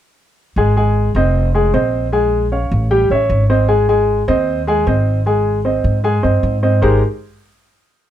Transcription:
0.56 G#1 G#3 G#4 G#5
0.77 G#3 G#4 G#5
1.15 F1 C4 C5 D#5
1.54 G#3 G#4 G#5
1.74 A#1 C4 C5 D#5
2.12 G#3 G#4 G#5
2.52 C#4 C#5 F5
2.71 A1
2.91 G3 G4 G5
3.10 A1 C#4 C#5 E5
3.29 G#1
3.50 C4 C5 D#5
3.68 G#3 G#4 G#5
3.89 G#3 G#4 G#5
4.28 D#2 C4 C5 D#5
4.67 G#3 G#4 G#5
4.87 G#1 C4 C5 D#5
5.26 G#3 G#4 G#5
5.65 C4 C5 D#5
5.84 G#2
6.04 G#3 G#4 G#5
6.23 G2 C4 C5 D#5
6.43 G#2
6.63 C4 C5 D#5
6.82 G#1 G#3 D#4 G4 G#4 A#4 C5

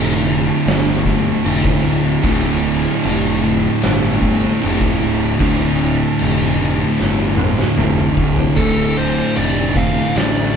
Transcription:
Already playing: F1 D2 A2 D3
0.25 D2 A2 D3
0.66 G1, snare, crash
1.04 D2 A2 D3, kick
1.43 F1 D2 A2 D3, crash
1.65 kick
1.85 D1
2.23 D1 D2 A2 D3, kick, crash
2.85 snare
3.03 F1, crash
3.42 D2 A2 D3
3.82 G1, snare, crash
4.21 D2 A2 D3, kick
4.61 F1 D2 A2 D3, crash
4.81 kick
5.03 D1
5.38 D1 D2 A2 D3, kick, crash
6.19 F1, crash
6.60 D2 A2 D3
7.00 G1, snare
7.37 A2 D3, mid tom
7.41 D2
7.59 snare
7.78 F1 D2 A2 D3, mid tom
8.17 D1, kick
8.36 floor tom
8.56 D1 D2 A2 D3 A4, kick, crash
8.96 C5, crash
9.36 F1 D5, crash
9.75 D2 A2 D3 F5, kick, crash
10.15 A1 D2 A2 D3 D5, snare, crash

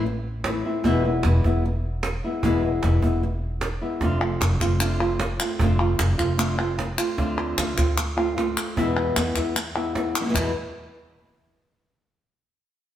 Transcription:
Already playing: A1
0.06 muted nylon-string guitar stroke
0.44 E3 A3 C4 E4, cajon slap
0.65 A3 C4 E4
0.84 E1 B2 E3 G#3 B3 E4, cajon bass, cajon slap
1.04 G#3 B3 E4
1.23 E1 E3 G#3 B3 E4, cajon slap
1.44 E1 G#3 B3 E4, cajon bass, cajon slap
1.65 muted nylon-string guitar stroke
2.03 cajon slap
2.24 G#3 B3 E4
2.43 E1 B2 E3 G#3 B3 E4, cajon bass
2.63 G#3 B3 E4, cajon slap
2.83 E1 E3 G#3 B3 E4, cajon slap
3.02 E1 G#3 B3 E4, cajon bass
3.23 muted nylon-string guitar stroke
3.61 cajon slap
3.81 G#3 B3 E4
4.01 F1 D3 A3 C4 F4, cajon bass, cajon slap
4.20 A3 C4 F4
4.41 F1, muted nylon-string guitar stroke, cajon slap, clap
4.60 F1 A3 C4 F4, cajon bass, clap
4.80 D3 A3 C4 F4, clap
5.00 A3 C4 F4, clap
5.19 muted nylon-string guitar stroke, cajon slap
5.40 A3 C4 F4, clap
5.59 F1 D3 A3 C4 F4, cajon bass
5.79 A3 C4 F4, cajon slap, clap
5.98 F1, muted nylon-string guitar stroke, cajon slap, clap
6.18 F1 A3 C4 F4, cajon bass, cajon slap, clap
6.37 D3 A3 C4 F4, clap
6.58 A3 C4 F4, clap
6.78 muted nylon-string guitar stroke, cajon slap
6.98 A3 C4 F4, clap
7.18 D2 D3 A3 C4 F4, cajon bass, cajon slap
7.38 cajon slap, clap
7.58 D2 D3 A3 C4 F4, cajon slap, clap
7.77 D2 A3 C4 F4, cajon bass, clap
7.97 muted nylon-string guitar stroke, clap
8.17 A3 C4 F4, clap
8.36 A3 C4 F4, cajon slap
8.57 clap
8.76 E2 B2 E3 G#3 B3 E4, cajon bass
8.97 cajon slap, clap
9.16 E2 E3 G#3 B3 E4, cajon slap, clap
9.36 E2 G#3 B3 E4, cajon bass, cajon slap, clap
9.55 muted nylon-string guitar stroke, clap
9.76 G#3 B3 E4, clap
9.95 G#3 B3 E4, cajon slap
10.15 clap
10.20 B2 E3 G#3 B3 E4
10.25 B2 E3 G#3 B3 E4
10.29 B2 E3 G#3 B3 E4
10.34 E2 B2 E3 G#3 B3 E4, cajon bass, clap

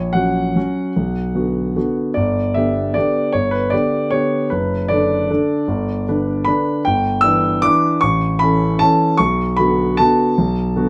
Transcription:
Already playing: A#1 C#5
0.13 F#3 C#4 F#4 F#5
0.56 F#3 C#4 F#4
0.96 B1
1.35 D3 B3 F#4
1.76 D3 B3 F#4
2.14 G1 D5
2.54 D3 B3 G4 E5
2.94 D3 B3 G4 D5
3.33 G1 C#5
3.51 B4
3.70 D3 B3 G4 D5
4.11 D3 B3 G4 C#5
4.50 F#1 B4
4.88 D3 D4 A4 D5
5.30 D3 D4 A4
5.68 G1
6.08 D3 D4 B4
6.45 D3 D4 B4 B5
6.85 G1 G5
7.21 E3 D4 B4 E6
7.62 E3 D4 B4 D6
8.01 A1 C#6
8.39 E3 C#4 A4 B5
8.79 E3 C#4 A4 A5
9.18 B1 C#6
9.57 D3 B3 F#4 B5
9.97 D3 B3 F#4 A5
10.38 B1
10.76 D3 B3 F#4

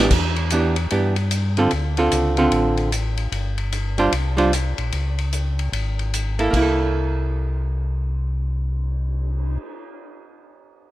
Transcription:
Already playing: E3
0.00 B3 D4 G4
0.11 E2, kick, crash
0.36 ride
0.50 E3 B3 D4 G4, hi-hat pedal, ride
0.76 ride
0.90 G2 E3 B3 D4 G4, ride
1.16 ride
1.31 hi-hat pedal, ride
1.57 D3 C4 F4 A4, ride
1.71 D2, ride
1.97 D3 C4 F4 A4, ride
2.12 C#2, hi-hat pedal, ride
2.37 D3 C4 F4 A4, ride
2.51 A1, ride
2.77 ride
2.92 hi-hat pedal, ride
3.17 ride
3.32 G1, ride
3.58 ride
3.72 hi-hat pedal, ride
3.98 G3 D4 F4 C5, ride
4.12 C2, ride
4.37 G3 D4 F4 C5, ride
4.53 hi-hat pedal, ride
4.78 A#1, ride
4.92 C#2, ride
5.18 ride
5.33 hi-hat pedal, ride
5.59 ride
5.72 G#1, ride
5.99 ride
6.14 hi-hat pedal, ride
6.39 A#3 E4 A4, ride
6.51 C2 A#3, kick, crash
6.57 E4
6.62 A4
6.79 cymbal swell

